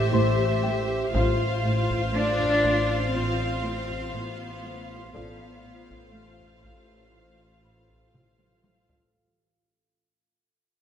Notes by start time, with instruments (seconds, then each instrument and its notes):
Already playing: double bass section A1, synth drone A1, cello section A3, glass harmonica G4 C5 E5, viola section G4, violin section C5 E5, celesta D5 D6
0.13 cello section A2, celesta C5 C6
0.63 cello section A3, celesta G4 G5
1.14 synth drone A1, double bass section A1, cello section A2, viola section F4, french horn section F4 C5, glass harmonica F4 F5 C6, violin section C5 F5, taiko
1.65 cello section A2
1.90 taiko
2.14 cello section A3 D4
2.39 taiko low-mid
2.64 cello section A2, taiko
3.13 cello section A2 C4, french horn section F4 C5
3.65 cello section A2
3.89 taiko
4.14 cello section A2 B3
4.64 cello section A3
5.13 synth drone A1, double bass section A1, cello section A2 B3, glass harmonica F4 A4 F5, french horn section F4 A4, viola section F4, violin section C5 F5, celesta D5, taiko
5.64 cello section A2
5.90 taiko
6.14 cello section A3
6.40 taiko low-mid
6.64 cello section A2, taiko
7.14 cello section A2, french horn section F4 C5
7.64 cello section A2, celesta B5
7.89 taiko
8.14 cello section A2, taiko mid
8.39 taiko high
8.64 cello section A3, taiko high
8.89 taiko low